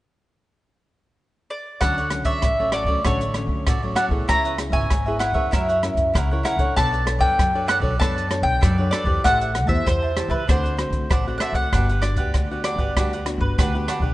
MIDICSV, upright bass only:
0, 0, Header, 1, 2, 480
1, 0, Start_track
1, 0, Key_signature, 2, "major"
1, 0, Tempo, 619067
1, 1407, Time_signature, 4, 2, 24, 8
1, 10962, End_track
2, 0, Start_track
2, 0, Title_t, "Upright bass"
2, 0, Program_c, 0, 32
2, 1405, Note_on_c, 0, 38, 77
2, 1726, Note_off_c, 0, 38, 0
2, 1726, Note_on_c, 0, 33, 67
2, 1845, Note_off_c, 0, 33, 0
2, 1883, Note_on_c, 0, 33, 74
2, 2190, Note_off_c, 0, 33, 0
2, 2203, Note_on_c, 0, 38, 74
2, 2324, Note_off_c, 0, 38, 0
2, 2364, Note_on_c, 0, 33, 93
2, 2671, Note_off_c, 0, 33, 0
2, 2687, Note_on_c, 0, 38, 84
2, 2805, Note_off_c, 0, 38, 0
2, 2843, Note_on_c, 0, 33, 92
2, 3048, Note_off_c, 0, 33, 0
2, 3167, Note_on_c, 0, 33, 83
2, 3286, Note_off_c, 0, 33, 0
2, 3325, Note_on_c, 0, 37, 93
2, 3646, Note_on_c, 0, 32, 73
2, 3657, Note_off_c, 0, 37, 0
2, 3765, Note_off_c, 0, 32, 0
2, 3805, Note_on_c, 0, 32, 76
2, 4112, Note_off_c, 0, 32, 0
2, 4128, Note_on_c, 0, 40, 75
2, 4246, Note_off_c, 0, 40, 0
2, 4288, Note_on_c, 0, 42, 87
2, 4594, Note_off_c, 0, 42, 0
2, 4608, Note_on_c, 0, 42, 71
2, 4727, Note_off_c, 0, 42, 0
2, 4769, Note_on_c, 0, 37, 100
2, 4972, Note_off_c, 0, 37, 0
2, 5089, Note_on_c, 0, 37, 76
2, 5207, Note_off_c, 0, 37, 0
2, 5248, Note_on_c, 0, 35, 86
2, 5570, Note_on_c, 0, 42, 72
2, 5582, Note_off_c, 0, 35, 0
2, 5688, Note_off_c, 0, 42, 0
2, 5729, Note_on_c, 0, 42, 76
2, 6034, Note_off_c, 0, 42, 0
2, 6050, Note_on_c, 0, 35, 78
2, 6168, Note_off_c, 0, 35, 0
2, 6209, Note_on_c, 0, 42, 85
2, 6515, Note_off_c, 0, 42, 0
2, 6530, Note_on_c, 0, 35, 78
2, 6648, Note_off_c, 0, 35, 0
2, 6688, Note_on_c, 0, 42, 99
2, 6892, Note_off_c, 0, 42, 0
2, 7010, Note_on_c, 0, 40, 77
2, 7128, Note_off_c, 0, 40, 0
2, 7172, Note_on_c, 0, 33, 89
2, 7493, Note_off_c, 0, 33, 0
2, 7493, Note_on_c, 0, 40, 66
2, 7610, Note_off_c, 0, 40, 0
2, 7652, Note_on_c, 0, 40, 75
2, 7957, Note_off_c, 0, 40, 0
2, 7972, Note_on_c, 0, 37, 74
2, 8090, Note_off_c, 0, 37, 0
2, 8129, Note_on_c, 0, 38, 83
2, 8435, Note_off_c, 0, 38, 0
2, 8452, Note_on_c, 0, 38, 68
2, 8569, Note_off_c, 0, 38, 0
2, 8612, Note_on_c, 0, 33, 85
2, 8814, Note_off_c, 0, 33, 0
2, 8932, Note_on_c, 0, 38, 77
2, 9050, Note_off_c, 0, 38, 0
2, 9091, Note_on_c, 0, 31, 96
2, 9411, Note_on_c, 0, 38, 73
2, 9423, Note_off_c, 0, 31, 0
2, 9529, Note_off_c, 0, 38, 0
2, 9570, Note_on_c, 0, 38, 75
2, 9876, Note_off_c, 0, 38, 0
2, 9892, Note_on_c, 0, 31, 70
2, 10010, Note_off_c, 0, 31, 0
2, 10051, Note_on_c, 0, 38, 89
2, 10356, Note_off_c, 0, 38, 0
2, 10372, Note_on_c, 0, 31, 81
2, 10490, Note_off_c, 0, 31, 0
2, 10534, Note_on_c, 0, 38, 99
2, 10736, Note_off_c, 0, 38, 0
2, 10852, Note_on_c, 0, 35, 79
2, 10962, Note_off_c, 0, 35, 0
2, 10962, End_track
0, 0, End_of_file